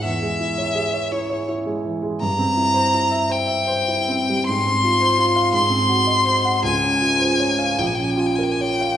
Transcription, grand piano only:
0.04 E2
0.22 G#3
0.40 E4
0.58 C#5
0.75 G#4
0.94 C#5
1.12 E4
1.30 C#5
1.48 E4
1.66 G#3
1.84 E3
2.02 G#3
2.22 G2
2.39 C4
2.57 E4
2.74 C5
2.93 E4
3.11 E5
3.29 C5
3.47 E5
3.67 C5
3.88 E4
4.09 C4
4.29 G3
4.49 G#2
4.66 C4
4.83 F4
5.00 C5
5.18 F4
5.36 F5
5.53 G#2
5.70 C4
5.89 F#4
6.07 D#5
6.25 C5
6.45 F#5
6.63 C#2
6.83 C#4
7.02 F4
7.20 C5
7.40 C#5
7.59 F5
7.78 A#1
7.98 C#4
8.17 F4
8.39 A#4
8.61 C#5
8.81 F5

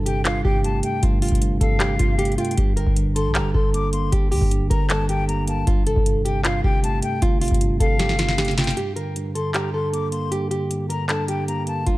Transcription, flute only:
0.06 G5
0.25 F5
0.45 G5
0.64 A5
0.84 G5
1.60 F5
2.38 G5
3.16 C6
3.35 A#5
3.54 C6
3.74 D6
3.93 C6
4.70 A#5
4.90 A5
5.09 G5
5.28 A#5
5.48 A5
6.25 G5
6.44 F5
6.64 G5
6.83 A5
7.03 G5
7.80 F5
8.58 G5
9.35 C6
9.55 A#5
9.74 C6
9.93 D6
10.12 C6
10.90 A#5
11.09 A5
11.28 G5
11.48 A#5
11.67 A5

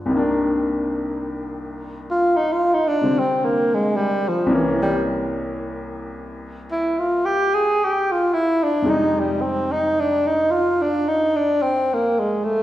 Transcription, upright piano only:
Already playing: D3 F3 G#3 B3
0.06 C2 C3
0.11 D#3 A#3
0.17 D4
3.01 C3 D3 G3 C4
4.46 C2 C3 E3
4.51 A#3 C#4
8.82 F2 C3 G3 G#3
8.87 D#4

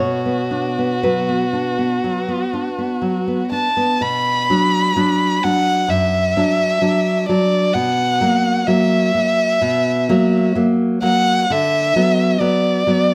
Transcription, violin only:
0.01 F#4
3.52 A5
4.01 B5
5.43 F#5
5.90 E5
7.29 D5
7.73 F#5
8.67 E5
11.03 F#5
11.51 E5
12.40 D5

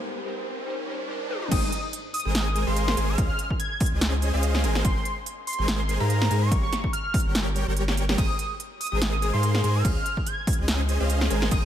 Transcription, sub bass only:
1.52 G#1
2.25 G#1
2.67 G#1
2.97 G#1
3.18 C#2
3.92 C#2
4.34 C#2
4.64 G#1
4.85 G#1
5.59 G#1
6.00 G#2
6.31 G#2
6.51 G1
7.25 G1
7.67 G1
8.18 G#1
8.92 G#1
9.34 G#2
9.64 G#2
9.85 C#2
10.59 C#2
11.00 C#2
11.31 G#1
11.51 G#1

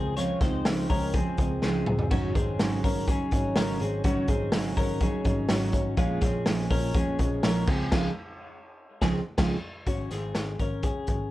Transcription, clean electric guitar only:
Already playing: C4 G#4
0.17 F4 C#5
0.41 D#4 C5
0.90 C#4 A#4
1.14 C4 G#4
1.63 C4 G#4
2.11 C#4 F#4
2.35 C4 G#4
2.84 C#4 A#4
3.08 C#4 G#4
3.57 C#4 A#4
3.81 C4 G#4
4.05 C#4 F#4
4.29 C4 G#4
4.77 C#4 A#4
5.01 C#4 G#4
5.49 C#4 F#4
5.98 G#3 F4
6.22 C4 G#4
6.71 C#4 A#4
6.95 C#4 G#4
7.44 C#4 A#4
7.68 C4 G#4
7.92 G#3 F4
9.02 C4 G#4
9.38 G#3 F4
9.87 C#4 F#4
10.11 C4 G#4
10.60 C#4 A#4
10.84 C#4 G#4

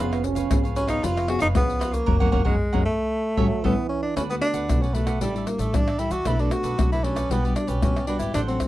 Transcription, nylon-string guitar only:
0.00 F3 B3 C#4 G#4
0.52 F3 B3 C#4 G#4
0.89 B3 C#4 G#4
1.03 F3
1.28 B3 C#4 G#4
1.55 F3 B3 C#4 G#4
2.08 F#3 A#3 C#4
2.22 F#3 A#3 C#4
2.32 F#3 A#3 C#4
2.45 F#3 A#3 C#4
2.74 F#3 A#3 C#4
3.38 G3 A3 C#4
3.65 G3 A3 C#4
4.17 D3 A3 B3 F#4
4.31 A3 B3 F#4
4.69 A2 A3 B3 F#4
4.94 A3 B3 F#4
5.21 A2 G3 D4 E4
5.33 G3 D4 E4
5.72 E3 G3 D4 E4
5.98 G3 D4 E4
6.25 B2 A3 D4 F#4
6.39 A3 D4 F#4
6.78 F#3 A3 D4 F#4
7.03 A3 D4 F#4
7.30 B2 G3 D4 F#4
7.44 G3 D4 F#4
7.83 B2 G3 D4 F#4
8.07 G3 D4 F#4
8.34 A2 F#3 C4 D4
8.48 F#3 C4 D4

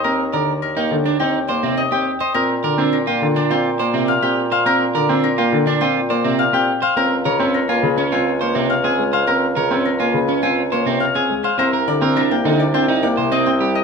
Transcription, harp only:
Already playing: D5 D#5 G5
0.04 A#4
0.33 D5
0.62 A#4
0.77 G5
1.05 D5
1.20 G5
1.48 D5
1.77 D#5
1.92 G5
2.20 D#5
2.34 A#4
2.64 D5
2.93 A#4
3.07 G5
3.36 D5
3.51 G5
3.79 D5
4.08 F5
4.22 G5
4.52 F5
4.66 A#4
4.95 D5
5.24 A#4
5.38 G5
5.67 D5
5.81 G5
6.10 D5
6.39 F5
6.54 G5
6.82 F5
6.97 A#4
7.25 C#5
7.54 A#4
7.69 G#5
7.98 C#5
8.12 G#5
8.41 C#5
8.70 F5
8.85 G#5
9.13 F5
9.27 A#4
9.56 C#5
9.85 A#4
10.00 G#5
10.28 C#5
10.43 G#5
10.72 C#5
11.00 F5
11.15 G#5
11.44 F5
11.59 A#4
11.88 D5
12.17 A#4
12.31 G5
12.60 D5
12.74 G5
13.03 D5
13.32 D#5
13.46 G5
13.75 D#5

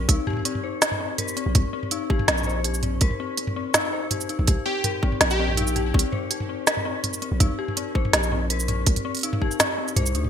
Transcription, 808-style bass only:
0.09 C2
1.46 A#1
1.55 C2
2.28 A#1
3.01 C2
4.39 A#1
4.48 C2
5.21 A#1
5.94 C2
7.32 A#1
7.40 C2
8.13 A#1
8.87 C2
9.96 C2
10.15 D2

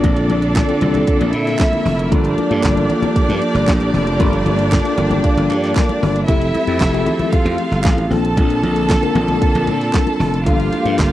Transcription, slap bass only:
0.04 A#1
0.30 A#1
0.82 C2
1.21 A#1
1.33 A#2
1.85 F1
2.12 G1
2.51 G2
2.64 G1
3.29 G2
3.54 G1
3.68 A#1
3.94 F1
4.20 G1
4.46 G1
4.97 G1
5.37 G1
5.50 G2
6.03 G1
6.28 F1
6.67 F2
6.81 F1
7.45 F2
7.71 G1
7.85 A1
8.10 A#1
8.37 A#1
8.63 A#1
9.15 A#1
9.55 A#1
9.67 A#2
10.20 F1
10.46 G1
10.85 G2
10.99 G1

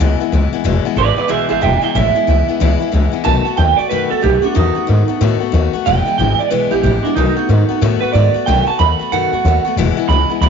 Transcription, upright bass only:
0.00 C#2
0.21 muted upright bass stroke
0.32 C#2
0.52 muted upright bass stroke
0.64 E1
0.84 muted upright bass stroke
0.96 G#1
1.17 muted upright bass stroke
1.29 B1
1.50 A1
1.63 E1
1.83 muted upright bass stroke
1.95 A1
2.28 C#2
2.48 muted upright bass stroke
2.61 C#2
2.82 muted upright bass stroke
2.93 C#2
3.13 muted upright bass stroke
3.26 B1
3.45 muted upright bass stroke
3.58 D#2
3.79 muted upright bass stroke
3.91 F#2
4.11 E2
4.24 B1
4.56 E2
4.76 muted upright bass stroke
4.89 G#2
5.09 muted upright bass stroke
5.21 A2
5.41 muted upright bass stroke
5.53 D#2
5.74 muted upright bass stroke
5.87 E1
6.07 muted upright bass stroke
6.18 G#1
6.40 muted upright bass stroke
6.51 B1
6.71 A1
6.83 A1
7.04 muted upright bass stroke
7.16 B1
7.38 muted upright bass stroke
7.49 G#2
7.70 muted upright bass stroke
7.82 A2
8.03 muted upright bass stroke
8.15 G#2
8.35 muted upright bass stroke
8.48 B1
8.80 D#2
9.00 muted upright bass stroke
9.12 F#2
9.32 E2
9.45 D#2
9.64 muted upright bass stroke
9.76 E1
9.97 muted upright bass stroke
10.08 C#2
10.29 muted upright bass stroke
10.41 C#2

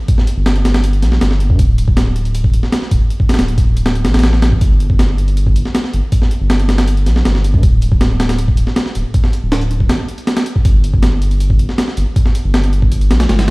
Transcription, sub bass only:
0.37 G1
1.03 A#1
1.22 G1
1.50 G2
1.59 D1
1.88 D1
2.91 D1
3.38 D1
4.05 A1
4.14 A1
4.61 G1
4.90 G1
5.93 G1
6.41 G1
7.06 A#1
7.25 G1
7.54 G2
7.63 D1
7.92 D1
8.95 D1
9.43 D1
9.89 A1
10.65 G1
10.93 G1
11.97 G1
12.44 G1
13.10 A#1
13.29 G1

